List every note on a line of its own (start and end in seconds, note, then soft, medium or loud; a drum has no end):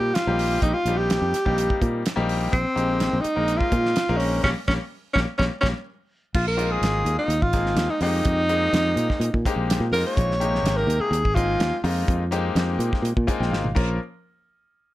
0.00 0.12 A#2 medium
0.00 0.11 G3 medium
0.00 0.11 A#3 medium
0.00 0.11 C4 medium
0.00 0.11 D#4 medium
0.00 0.11 G4 medium
0.00 0.16 G4 medium
0.14 0.62 F4 medium
0.14 snare loud
0.14 closed hi-hat medium
0.27 0.58 A#1 medium
0.27 0.74 G3 medium
0.27 0.74 A#3 medium
0.27 0.74 C4 medium
0.27 0.74 D#4 medium
0.27 0.74 G4 medium
0.39 open hi-hat medium
0.62 0.73 A#1 medium
0.62 0.75 D#4 medium
0.62 kick loud
0.62 closed hi-hat medium
0.73 0.99 F4 medium
0.85 1.17 A#1 medium
0.85 1.34 G3 medium
0.85 1.34 A#3 medium
0.85 1.34 C4 medium
0.85 1.34 D#4 medium
0.85 1.34 G4 medium
0.85 closed hi-hat medium
0.97 1.93 G4 medium
1.10 snare loud
1.10 closed hi-hat medium
1.22 1.32 F2 medium
1.33 muted fretless electric bass stroke soft
1.33 snare soft
1.33 closed hi-hat medium
1.45 1.67 A#1 medium
1.45 2.02 G3 medium
1.45 2.02 A#3 medium
1.45 2.02 C4 medium
1.45 2.02 D#4 medium
1.45 2.02 G4 medium
1.45 kick medium
1.58 closed hi-hat medium
1.70 kick medium
1.82 2.02 A#2 medium
1.82 kick medium
1.82 closed hi-hat medium
2.06 snare loud
2.06 closed hi-hat medium
2.16 2.48 A#1 medium
2.16 2.52 G3 medium
2.16 2.52 A#3 medium
2.16 2.52 C4 medium
2.16 2.52 D#4 medium
2.16 2.52 G4 loud
2.29 open hi-hat medium
2.53 2.64 A#1 medium
2.53 3.23 C4 medium
2.53 kick loud
2.53 closed hi-hat medium
2.75 3.08 A#1 medium
2.75 3.23 G#3 medium
2.75 3.23 A#3 medium
2.75 3.23 C4 medium
2.75 3.23 D#4 medium
2.75 3.23 G4 medium
2.75 closed hi-hat soft
3.00 snare loud
3.00 closed hi-hat medium
3.13 3.23 A#1 medium
3.21 3.59 D#4 medium
3.21 closed hi-hat medium
3.36 3.58 A#1 medium
3.36 3.92 G#3 medium
3.36 3.92 A#3 medium
3.36 3.92 C4 medium
3.36 3.92 D#4 medium
3.36 3.92 A#4 medium
3.48 closed hi-hat medium
3.57 4.19 F4 loud
3.57 kick medium
3.72 3.93 A#2 medium
3.72 kick medium
3.72 closed hi-hat medium
3.86 snare soft
3.96 snare loud
3.96 closed hi-hat medium
4.09 4.40 A#1 loud
4.09 4.44 G#3 medium
4.09 4.42 A#3 medium
4.09 4.44 C4 medium
4.09 4.44 D#4 medium
4.09 4.44 A#4 medium
4.17 4.42 C#4 medium
4.17 open hi-hat medium
4.43 4.53 A#1 medium
4.43 4.52 G3 medium
4.43 4.52 A#3 medium
4.43 4.52 C#4 medium
4.43 4.50 C#4 medium
4.43 kick medium
4.43 snare medium
4.68 4.77 A#1 medium
4.68 4.77 G3 medium
4.68 4.77 A#3 medium
4.68 4.74 C#4 medium
4.68 4.77 C#4 medium
4.68 kick medium
4.68 snare medium
5.13 5.25 A#1 medium
5.13 5.23 G3 medium
5.13 5.23 A#3 medium
5.13 5.20 C#4 medium
5.13 5.23 C#4 medium
5.13 kick medium
5.13 snare medium
5.38 5.49 A#1 medium
5.38 5.47 G3 medium
5.38 5.47 A#3 medium
5.38 5.44 C#4 medium
5.38 5.47 C#4 medium
5.38 kick medium
5.38 snare medium
5.60 5.72 A#1 medium
5.60 5.70 G3 medium
5.60 5.70 A#3 medium
5.60 5.67 C#4 medium
5.60 5.70 C#4 medium
5.60 kick medium
5.65 snare medium
6.34 6.76 A#1 medium
6.34 6.46 F4 medium
6.34 kick loud
6.34 crash loud
6.48 6.73 A#4 medium
6.57 7.33 G#3 medium
6.57 7.33 A#3 medium
6.57 7.33 C4 medium
6.57 7.33 D#4 medium
6.57 7.33 F4 medium
6.57 closed hi-hat soft
6.71 7.17 G#4 medium
6.81 7.03 G#1 medium
6.81 snare medium
6.81 closed hi-hat medium
7.05 7.16 D#2 medium
7.05 closed hi-hat medium
7.17 7.43 D#4 medium
7.17 muted fretless electric bass stroke soft
7.28 7.40 D#2 medium
7.28 closed hi-hat medium
7.42 7.73 G#1 medium
7.42 7.91 F4 medium
7.42 kick medium
7.53 7.92 G#3 medium
7.53 7.92 A#3 medium
7.53 7.91 C4 medium
7.53 7.92 D#4 medium
7.53 7.92 G#4 medium
7.53 kick medium
7.53 snare soft
7.53 closed hi-hat medium
7.66 snare soft
7.75 7.87 D#2 medium
7.75 snare loud
7.75 closed hi-hat medium
7.90 8.01 D#4 medium
8.01 8.22 F2 medium
8.01 8.40 G#3 medium
8.01 8.40 A#3 medium
8.01 8.40 C4 medium
8.01 8.40 D#4 medium
8.01 9.41 D#4 loud
8.01 8.40 G4 medium
8.01 open hi-hat medium
8.25 8.67 F2 medium
8.25 kick loud
8.25 closed hi-hat medium
8.49 9.24 G#3 medium
8.49 9.24 A#3 medium
8.49 9.24 C4 medium
8.49 9.24 D#4 medium
8.49 9.24 G#4 medium
8.49 closed hi-hat medium
8.73 8.94 F2 medium
8.73 snare loud
8.73 closed hi-hat medium
8.96 9.08 A#2 medium
8.96 closed hi-hat medium
9.10 kick medium
9.10 snare soft
9.20 9.31 A#2 medium
9.20 closed hi-hat medium
9.34 9.44 A#2 medium
9.34 kick medium
9.45 9.83 G#3 medium
9.45 9.83 A#3 medium
9.45 9.83 C4 medium
9.45 9.84 D#4 medium
9.45 9.83 G4 loud
9.45 kick medium
9.45 closed hi-hat medium
9.56 9.77 A#1 medium
9.70 snare loud
9.70 closed hi-hat medium
9.80 9.91 A#2 medium
9.92 10.03 F2 medium
9.92 10.31 G#3 medium
9.92 10.31 A#3 medium
9.92 10.31 C4 medium
9.92 10.31 D#4 medium
9.92 10.31 F4 medium
9.92 10.04 A#4 medium
9.92 open hi-hat medium
10.07 10.78 C#5 medium
10.17 10.59 A#1 medium
10.17 kick loud
10.17 closed hi-hat medium
10.31 snare soft
10.40 11.16 C3 medium
10.40 11.15 G#3 medium
10.40 11.15 A#3 medium
10.40 11.16 D#4 medium
10.40 11.15 G4 medium
10.40 closed hi-hat medium
10.55 snare soft
10.63 10.84 G#1 medium
10.63 snare loud
10.63 closed hi-hat medium
10.77 11.02 A#4 medium
10.87 10.98 D#2 medium
10.87 closed hi-hat medium
11.00 11.36 G#4 medium
11.00 muted fretless electric bass stroke soft
11.11 11.22 D#2 medium
11.11 closed hi-hat medium
11.25 11.55 G#1 medium
11.25 kick medium
11.35 11.74 G#3 medium
11.35 11.74 A#3 medium
11.35 11.74 C4 medium
11.35 11.74 D#4 medium
11.35 11.82 F4 loud
11.35 11.74 G#4 medium
11.35 kick medium
11.35 closed hi-hat medium
11.60 11.71 D#2 medium
11.60 snare loud
11.60 closed hi-hat medium
11.84 12.05 F2 loud
11.84 12.22 G#3 medium
11.84 12.22 A#3 medium
11.84 12.22 C4 medium
11.84 12.22 D#4 medium
11.84 12.22 F4 medium
11.84 open hi-hat medium
12.08 12.49 F2 medium
12.08 kick loud
12.08 closed hi-hat medium
12.31 13.07 G#3 medium
12.31 13.07 A#3 medium
12.31 13.07 C4 medium
12.31 13.06 D#4 medium
12.31 13.07 G4 loud
12.31 closed hi-hat medium
12.55 12.76 F2 medium
12.55 snare loud
12.55 closed hi-hat medium
12.79 12.90 A#2 loud
12.79 closed hi-hat medium
12.93 kick medium
12.93 snare soft
13.02 13.14 A#2 medium
13.02 closed hi-hat medium
13.17 13.26 A#2 medium
13.17 kick medium
13.27 13.65 G#3 medium
13.27 13.65 A#3 medium
13.27 13.65 C4 medium
13.27 13.65 D#4 medium
13.27 13.65 F4 medium
13.27 13.39 G#5 medium
13.27 kick medium
13.27 closed hi-hat medium
13.40 13.50 A#1 medium
13.40 13.51 G5 medium
13.40 snare soft
13.51 13.73 G#1 medium
13.51 13.73 F5 medium
13.51 snare medium
13.64 high tom medium
13.75 13.98 A#1 medium
13.75 13.98 F3 medium
13.75 13.97 A#3 medium
13.75 13.97 C#4 medium
13.75 13.97 F4 medium
13.75 13.97 A#4 medium
13.75 kick loud
13.75 crash medium